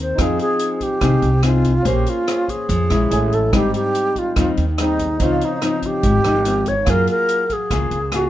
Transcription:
Already playing: D#2 D#3 C4 A#4
0.01 C5
0.15 F2 F3 D#4 F4, kick, cross-stick, closed hi-hat
0.19 C4 D#4 G#4 C5 F5
0.39 G#4, closed hi-hat
0.59 closed hi-hat
0.81 G4, kick, closed hi-hat
1.01 C2 C3 C4 D#4 G#4, kick, cross-stick, closed hi-hat
1.22 C2, closed hi-hat
1.43 C4 D#4 F4 G#4, cross-stick, closed hi-hat
1.64 kick, closed hi-hat
1.83 A#1 A#3 C#4 G#4 A#4 C5, kick, closed hi-hat
1.88 G4 G#5
2.06 F4, closed hi-hat
2.28 C#4 G#4 C5, cross-stick, closed hi-hat
2.48 G#4, kick, closed hi-hat
2.69 F2 F3, kick, closed hi-hat
2.90 A#1 G#3 C#4 E4, cross-stick, closed hi-hat
3.11 A1 A3 E4 C#5 G#5, closed hi-hat
3.32 A4, kick, closed hi-hat
3.51 G#1 G#2 G3 C4 D#4 G4 C5, kick, cross-stick, closed hi-hat
3.55 G4 G5
3.74 G4, closed hi-hat
3.95 closed hi-hat
4.16 F4, kick, closed hi-hat
4.36 D#2 D#3 G3 C4 D#4, kick, cross-stick, closed hi-hat
4.57 D#2, closed hi-hat
4.78 G3 C4 D#4 G#4 C5 G5, cross-stick, closed hi-hat
4.82 D#4
4.99 kick, closed hi-hat
5.17 C#2 C#3 F3 C#4 D#4 C5, kick, closed hi-hat
5.22 C4 D#4 F4 F5
5.41 D#4, closed hi-hat
5.62 F3 C4 D#4, cross-stick, closed hi-hat
5.82 G4, kick, closed hi-hat
6.03 G#1 G#2, kick, closed hi-hat
6.24 G#1 F3 C4 D#4, cross-stick, closed hi-hat
6.45 F3 C4 D#4, closed hi-hat
6.66 C#5, kick, closed hi-hat
6.85 F#2 F#3 A#3 F4 G#4 A#4 F5, kick, cross-stick, closed hi-hat
6.90 F#4 A#4
7.07 A#4, closed hi-hat
7.29 closed hi-hat
7.50 G#4, kick, closed hi-hat
7.71 C#2 C#3 A#3 F4 G#4, kick, cross-stick, closed hi-hat
7.91 C#2, closed hi-hat
8.12 A#3 F4 G#4, cross-stick, closed hi-hat
8.16 F#4

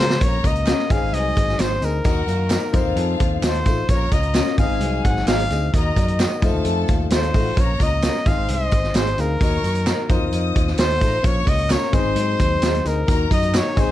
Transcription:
Already playing: G#3 F4 C5
0.00 C#3 G#4 A#4
0.10 snare
0.21 A#1 A#2 A#3 C#4 F4 A#4 C#5 A#5, kick, closed hi-hat, tambourine
0.43 C#2 A#3 C#4 F4 D#5, kick, closed hi-hat, tambourine
0.55 closed hi-hat
0.66 C#4 F4 A#4, snare, clap, closed hi-hat, tambourine
0.79 snare
0.89 G#1 G#2 C4 D#4 G#4 C#5 F5 G#5, kick, closed hi-hat, tambourine
0.97 D#5
1.02 G#1
1.13 C2 F#3 D#4 D#5, closed hi-hat
1.35 G#1, kick, closed hi-hat, tambourine
1.49 snare
1.58 G#1 C4 D#4 G#4 C5, snare, clap, closed hi-hat, tambourine
1.80 D2 C4 D#4 G#4 D#5, closed hi-hat, tambourine
1.85 A#4
2.04 D#2 D#3 A#3 D#4 F#4 D#5 F#5, kick, closed hi-hat, tambourine
2.27 F#2 A#3 D#4 F#4 F5, closed hi-hat, tambourine
2.50 D#4 F#4 A#4, snare, clap, closed hi-hat, tambourine
2.72 F2 A3 C4 D#4 F4 C5 F5, kick, closed hi-hat, tambourine
2.85 D#2
2.96 F2 C4 A4, closed hi-hat
3.19 D#2 A3 F4, kick, closed hi-hat
3.42 D#2 C4 D#4 A4 C5, snare, clap, closed hi-hat, tambourine
3.54 closed hi-hat
3.64 A1 A3 D#4 F4 A4, kick, closed hi-hat, tambourine
3.88 A#1 A#2 A#3 C#4 F4 A#4 C#5 A#5, kick, closed hi-hat, tambourine
4.12 C#2 A#3 C#4 F4 C#5 D#5, kick, closed hi-hat, tambourine
4.23 closed hi-hat
4.34 C#4 F4 A#4, snare, clap, closed hi-hat, tambourine
4.46 snare
4.58 G#1 G#2 C4 D#4 G#4 D#5 F5 G#5, kick, closed hi-hat, tambourine
4.69 G#1
4.80 C2 F#3 D#4, closed hi-hat
5.04 G#1 F#5, kick, closed hi-hat
5.16 snare
5.26 G#1 C4 D#4 G#4 F5, snare, clap, closed hi-hat, tambourine
5.39 closed hi-hat
5.50 D2 C4 D#4 G#4 D#5, closed hi-hat, tambourine
5.73 D#2 D#3 A#3 D#4 F#4 A#4 D#5 A#5, kick, closed hi-hat, tambourine
5.96 F#2 A#3 D#4 F#4 D5, kick, closed hi-hat, tambourine
6.03 D#5
6.08 closed hi-hat
6.19 D#4 F#4 A#4, snare, clap, closed hi-hat, tambourine
6.42 F2 A3 D#4 F4 A4 C5 A5, kick, closed hi-hat, tambourine
6.54 D#2
6.65 F2 C4 A4, closed hi-hat
6.88 D#2 A3 F4, kick, closed hi-hat, tambourine
7.10 D#2 C4 D#4 A4 C5, snare, clap, closed hi-hat, tambourine
7.15 C5
7.20 C#4 C#5, closed hi-hat
7.28 D#4 D#5
7.34 A1 A3 D#4 F4 A4 F5, kick, open hi-hat, tambourine
7.43 F#4 F#5
7.51 A4 A5
7.56 A#1 A#2 A#3 C#4 F4 A#4 C#5 A#5, kick, closed hi-hat, tambourine
7.60 C#5
7.79 C#2 A#3 C#4 F4 D#5, kick, closed hi-hat, tambourine
8.02 C#4 F4 A#4, snare, clap, closed hi-hat, tambourine
8.14 snare
8.26 G#1 G#2 C4 D#4 G#4 C5 D#5 F5 C6, kick, closed hi-hat, tambourine
8.37 G#1
8.48 C2 D#5, closed hi-hat
8.71 G#1, kick, closed hi-hat, tambourine
8.84 snare
8.94 G#1 C4 D#4 G#4 C5, snare, clap, closed hi-hat, tambourine
9.07 closed hi-hat
9.17 D2 C4 D#4 G#4 A#4 F5, closed hi-hat, tambourine
9.40 D#2 D#3 A#3 D#4 F#4 C#5 D#5 C#6, kick, closed hi-hat, tambourine
9.63 F#2 A#3 D#4 F#4 D#5, closed hi-hat, tambourine
9.75 closed hi-hat
9.86 D#4 F#4 A#4, snare, clap, closed hi-hat, tambourine
10.08 F2 F#3 D#4 F4 C5 D#5 D#6, kick, closed hi-hat, tambourine
10.13 C4
10.21 D#2
10.32 F2, closed hi-hat
10.56 D#2, kick, closed hi-hat
10.67 snare
10.78 D#2 C4 D#4 A4 C5, snare, clap, closed hi-hat, tambourine
10.90 F#4 F#5, closed hi-hat
11.00 A1 A3 D#4 F4 A4 A5, kick, closed hi-hat, tambourine
11.07 A#4 A#5
11.14 C5 C6
11.21 A#1 A#2 A#3 C#4 F4 C#5 C#6, kick, closed hi-hat, tambourine
11.26 C#5
11.45 C#2 A#3 C#4 F4 C#5 D#5, kick, closed hi-hat, tambourine
11.58 closed hi-hat
11.69 C#4 F4 A#4 C#5, snare, clap, closed hi-hat, tambourine
11.82 snare
11.91 G#1 G#2 B3 C4 D#4 G#4 C5 D#5 C6, kick, closed hi-hat, tambourine
11.97 C4
12.04 G#1
12.15 G#2 F#3 D#4, closed hi-hat, tambourine
12.39 D#2, kick, closed hi-hat, tambourine
12.62 D#2 C4 D#4 G#4, snare, clap, closed hi-hat, tambourine
12.74 closed hi-hat
12.84 D2 C4 D#4 G#4 A#4 D#5, closed hi-hat, tambourine
13.07 D#2 D#3 A#3 D#4 F#4 A#4 D#5 A#5, kick, closed hi-hat, tambourine
13.29 F#2 A#3 D#4 F#4 D#5, kick, closed hi-hat, tambourine
13.43 closed hi-hat
13.54 D#4 F#4 A#4 C#5, snare, clap, closed hi-hat, tambourine
13.76 G#1 G#2 C4 D#4 G#4 D#5 G#5, kick, closed hi-hat, tambourine
13.81 C5

